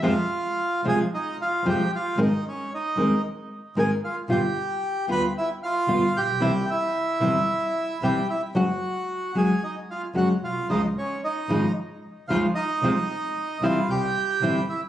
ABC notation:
X:1
M:4/4
L:1/8
Q:1/4=113
K:Fm
V:1 name="Bandoneon"
[Ff]3 [Aa] [Ee] [Ff] [Gg] [Ff] | [Ee] [Dd] [Ee]2 z2 [Aa] [Ff] | [Gg]3 [=B=b] [=E=e] [Ff]2 [Gg]- | [Gg] [=E=e]4- [Ee] [Gg] [Ee] |
[_G_g]3 [Aa] [Ee] [Ff] [Gg] [Ff] | [Ee] [Dd] [Ee]2 z2 [Ff] [Ee]- | [Ee]3 [Ff] [Gg]3 [=E=e] |]
V:2 name="Nylon-string guitar" clef=bass
[C,F,A,CF] z2 [C,F,A,CF] z2 [C,F,A,CF] z | [A,CEB] z2 [A,CEB] z2 [A,CEB] z | [G,=B,F] z2 [G,B,F] z2 [G,B,F] z | [C,=E,G,C=E] z2 [C,E,G,CE] z2 [C,E,G,CE] z |
[_G,A,D_G] z2 [G,A,DG] z2 [G,A,DG] z | [D,F,A,EF] z2 [D,F,A,EF] z2 [D,F,A,EF] z | [C,F,A,CF] z2 [C,=E,G,C=E] z2 [C,E,G,CE] z |]
V:3 name="Double bass" clef=bass
F,, z2 C,, z2 F,, z | A,,, z2 E,, z2 A,,, z | G,,, z2 =D,, z2 G,,, B,,, | C,, z2 G,,, z2 C,, z |
_G,,, z2 D,, z2 G,,, =B,,, | D,, z2 A,,, z2 D,, z | C,, z2 C,, C,, z G,,, z |]